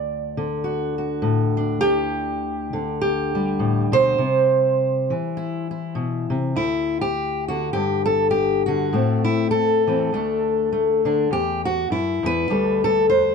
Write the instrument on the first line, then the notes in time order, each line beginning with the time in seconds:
steel-string acoustic guitar
Already playing: D2 D5
0.37 D3
0.64 F#4
0.98 F#4
1.22 A2
1.57 D4
1.81 D2 G4
2.73 D3
3.01 G4
3.35 G3
3.59 A2
3.92 B2 C5
4.18 C3
5.10 E3
5.37 E4
5.71 E4
5.95 B2
6.30 C3
6.56 D2 E4
7.01 G4
7.48 D3 F#4
7.73 G2 G4
8.06 A4
8.31 G4
8.66 D3 F#4
8.93 A2 A3 C4
9.25 E4
9.51 A4
9.87 E3 C4
10.13 D2 A3 D4
10.73 A3
11.05 D3 D4
11.31 E2 G4
11.65 F#4
11.90 F#2 E4
12.23 E2 B4
12.50 D2 G3 A4
12.84 A4
13.10 C5